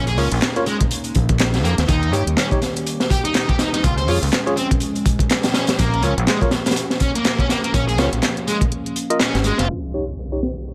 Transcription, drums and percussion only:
0.07 closed hi-hat
0.18 open hi-hat
0.32 closed hi-hat
0.42 snare, clap, closed hi-hat
0.56 closed hi-hat
0.66 closed hi-hat
0.81 kick, closed hi-hat
0.91 closed hi-hat
1.04 closed hi-hat
1.15 kick, closed hi-hat
1.29 kick, closed hi-hat
1.39 snare, clap, closed hi-hat
1.54 snare, closed hi-hat
1.65 closed hi-hat
1.78 snare, closed hi-hat
1.88 kick, closed hi-hat
2.03 closed hi-hat
2.13 closed hi-hat
2.27 closed hi-hat
2.37 snare, clap, closed hi-hat
2.51 kick, closed hi-hat
2.62 snare, closed hi-hat
2.76 closed hi-hat
2.86 closed hi-hat
3.00 snare, closed hi-hat
3.10 kick, closed hi-hat
3.25 closed hi-hat
3.34 snare, clap, closed hi-hat
3.49 kick, closed hi-hat
3.59 snare, closed hi-hat
3.73 snare, closed hi-hat
3.84 kick, closed hi-hat
3.98 closed hi-hat
4.08 open hi-hat
4.23 closed hi-hat
4.32 snare, clap, closed hi-hat
4.47 closed hi-hat
4.57 closed hi-hat
4.71 kick, closed hi-hat
4.80 closed hi-hat
4.95 closed hi-hat
5.06 kick, closed hi-hat
5.19 kick, closed hi-hat
5.30 snare, clap, closed hi-hat
5.43 snare, closed hi-hat
5.54 snare, closed hi-hat
5.67 snare, closed hi-hat
5.69 closed hi-hat
5.79 kick, closed hi-hat
5.94 closed hi-hat
6.03 closed hi-hat
6.18 closed hi-hat
6.27 snare, clap, closed hi-hat
6.41 kick, closed hi-hat
6.51 snare, closed hi-hat
6.66 snare, closed hi-hat
6.71 snare, closed hi-hat
6.76 closed hi-hat
6.90 snare, closed hi-hat
7.00 kick, closed hi-hat
7.15 closed hi-hat
7.25 snare, clap, closed hi-hat
7.39 kick, closed hi-hat
7.49 snare, closed hi-hat
7.64 closed hi-hat
7.74 kick, closed hi-hat
7.89 closed hi-hat
7.98 snare, closed hi-hat
8.13 closed hi-hat
8.22 snare, clap, closed hi-hat
8.37 closed hi-hat
8.48 closed hi-hat
8.61 kick, closed hi-hat
8.72 closed hi-hat
8.86 closed hi-hat
8.96 closed hi-hat
9.10 closed hi-hat
9.20 snare, clap, closed hi-hat
9.34 snare, closed hi-hat
9.44 closed hi-hat
9.58 snare, closed hi-hat
9.69 closed hi-hat
9.93 closed hi-hat
10.18 closed hi-hat
10.42 snare, closed hi-hat
10.56 closed hi-hat
10.67 closed hi-hat

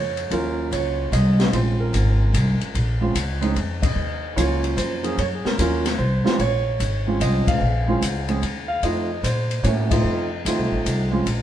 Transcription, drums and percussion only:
0.17 ride
0.31 kick, ride
0.72 kick, ride
1.12 kick, hi-hat pedal, ride
1.40 snare, ride
1.53 kick, ride
1.93 kick, hi-hat pedal, ride
2.34 kick, hi-hat pedal, ride
2.61 ride
2.75 kick, ride
3.15 kick, hi-hat pedal, ride
3.42 ride
3.56 kick, ride
3.83 kick, ride
4.37 kick, hi-hat pedal, ride
4.64 ride
4.78 kick, hi-hat pedal, ride
5.04 ride
5.18 kick, ride
5.45 snare
5.59 kick, hi-hat pedal, ride
5.86 snare, ride
5.99 kick
6.26 snare
6.39 kick, ride
6.80 kick, hi-hat pedal, ride
7.21 kick, hi-hat pedal, ride
7.47 kick, ride
8.02 kick, hi-hat pedal, ride
8.29 ride
8.42 kick, ride
8.83 kick, ride
9.24 kick, hi-hat pedal, ride
9.51 ride
9.64 kick, hi-hat pedal, ride
9.91 kick, ride
10.46 kick, hi-hat pedal, ride
10.86 kick, hi-hat pedal, ride
11.27 kick, ride

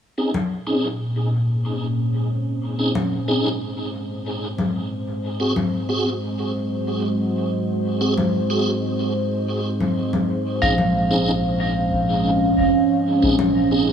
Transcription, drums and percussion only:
0.34 low conga
2.95 low conga
4.58 low conga
5.56 low conga
8.18 low conga
9.80 low conga
10.13 low conga
10.78 low conga
13.39 low conga

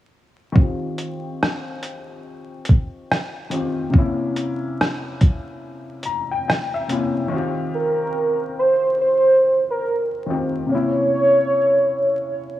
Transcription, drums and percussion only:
0.56 kick
0.98 closed hi-hat
1.43 cross-stick
1.83 closed hi-hat
2.65 closed hi-hat
2.69 kick
3.11 cross-stick
3.51 closed hi-hat
3.94 kick
4.36 closed hi-hat
4.81 cross-stick
5.21 kick, closed hi-hat
6.03 closed hi-hat
6.50 cross-stick
6.89 closed hi-hat

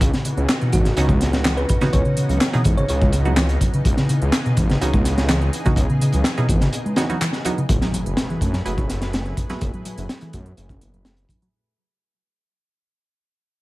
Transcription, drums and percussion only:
0.01 kick, closed hi-hat
0.14 snare, closed hi-hat
0.25 closed hi-hat
0.37 closed hi-hat
0.49 snare, clap, closed hi-hat
0.61 closed hi-hat
0.72 kick, closed hi-hat, high conga
0.85 snare, closed hi-hat
0.97 closed hi-hat
1.09 kick, closed hi-hat, high conga
1.21 snare, closed hi-hat, high conga
1.33 snare, closed hi-hat
1.45 snare, clap, closed hi-hat
1.57 closed hi-hat
1.69 kick, closed hi-hat
1.81 snare, closed hi-hat, high conga
1.93 kick, closed hi-hat
2.05 closed hi-hat
2.17 closed hi-hat
2.29 closed hi-hat, low conga
2.41 snare, clap, closed hi-hat
2.54 closed hi-hat
2.64 kick, closed hi-hat, high conga
2.78 closed hi-hat
2.88 closed hi-hat
3.01 kick, closed hi-hat
3.12 closed hi-hat, high conga
3.25 closed hi-hat, low conga
3.37 snare, clap, closed hi-hat
3.49 closed hi-hat
3.61 kick, closed hi-hat, low conga
3.74 closed hi-hat
3.85 kick, closed hi-hat
3.97 snare, closed hi-hat
4.09 closed hi-hat
4.22 closed hi-hat
4.32 snare, clap, closed hi-hat
4.46 closed hi-hat
4.57 kick, closed hi-hat, high conga
4.70 snare, closed hi-hat
4.81 closed hi-hat
4.93 kick, closed hi-hat, high conga
5.05 snare, closed hi-hat, high conga
5.18 snare, closed hi-hat
5.29 snare, clap, closed hi-hat
5.42 closed hi-hat
5.53 closed hi-hat
5.65 kick, closed hi-hat, high conga
5.76 kick, closed hi-hat
5.90 closed hi-hat
6.01 closed hi-hat
6.12 closed hi-hat, low conga
6.24 snare, clap, closed hi-hat
6.37 closed hi-hat
6.49 kick, closed hi-hat, high conga
6.61 snare, closed hi-hat
6.73 closed hi-hat
6.86 closed hi-hat
6.96 snare, closed hi-hat, high conga
7.09 closed hi-hat, low conga
7.21 clap, closed hi-hat
7.33 snare, closed hi-hat
7.45 closed hi-hat, low conga
7.58 closed hi-hat
7.69 kick, closed hi-hat
7.81 snare, closed hi-hat
7.94 closed hi-hat
8.06 closed hi-hat
8.17 snare, closed hi-hat
8.30 closed hi-hat
8.41 kick, closed hi-hat
8.53 snare, closed hi-hat
8.66 closed hi-hat
8.78 kick, closed hi-hat
8.89 snare, closed hi-hat
9.01 snare, closed hi-hat
9.13 snare, closed hi-hat
9.26 closed hi-hat
9.37 kick, closed hi-hat
9.50 snare, closed hi-hat, high conga
9.61 kick, closed hi-hat
9.74 closed hi-hat
9.85 closed hi-hat
9.98 closed hi-hat, low conga
10.09 snare, closed hi-hat
10.21 closed hi-hat
10.33 kick, closed hi-hat, high conga
10.46 closed hi-hat
10.57 closed hi-hat
10.69 kick, closed hi-hat
10.81 closed hi-hat, high conga
10.94 closed hi-hat, low conga
11.05 snare, closed hi-hat
11.17 closed hi-hat
11.29 kick, closed hi-hat, low conga
11.42 closed hi-hat

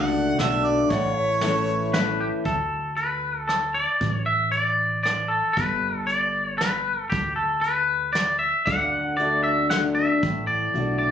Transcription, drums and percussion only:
0.39 snare, closed hi-hat
0.90 kick, closed hi-hat
1.41 snare, closed hi-hat
1.94 snare, closed hi-hat
2.45 kick, closed hi-hat
2.97 closed hi-hat
3.49 cross-stick, closed hi-hat
4.01 kick, closed hi-hat
4.53 closed hi-hat
5.06 cross-stick, closed hi-hat
5.57 kick, closed hi-hat
6.09 closed hi-hat
6.61 snare, closed hi-hat
7.12 kick, closed hi-hat
7.64 closed hi-hat
8.15 snare, closed hi-hat
8.67 kick, closed hi-hat
9.19 closed hi-hat
9.71 snare, closed hi-hat
10.23 kick, closed hi-hat
10.75 closed hi-hat

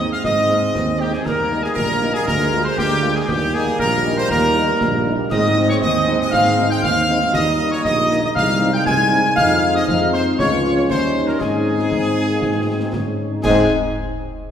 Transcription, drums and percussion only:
0.24 concert bass drum, snare
0.37 snare
0.50 snare
0.75 concert bass drum, snare
1.13 snare
1.26 concert bass drum, snare, crash
1.64 snare
1.76 concert bass drum
2.02 snare
2.28 concert bass drum, snare
2.40 snare
2.53 snare
2.78 concert bass drum, snare
3.16 snare
3.28 concert bass drum, snare, crash
3.67 snare
3.79 concert bass drum
4.30 concert bass drum, snare
4.81 concert bass drum, snare
5.31 concert bass drum, snare, crash
5.70 snare
5.83 concert bass drum
6.08 snare
6.33 concert bass drum, snare
6.45 snare
6.58 snare
6.83 concert bass drum, snare
7.22 snare
7.34 concert bass drum, snare, crash
7.72 snare
7.85 concert bass drum
8.11 snare
8.36 concert bass drum, snare
8.48 snare
8.61 snare
8.86 concert bass drum, snare
9.24 snare
9.37 concert bass drum, snare, crash
9.76 snare
9.88 concert bass drum
10.13 snare
10.39 concert bass drum, snare
10.52 snare
10.65 snare
10.90 concert bass drum, snare
11.29 snare
11.41 concert bass drum, snare, crash
11.79 snare
11.91 concert bass drum
12.42 concert bass drum, snare
12.93 concert bass drum, snare
13.44 concert bass drum, snare, crash

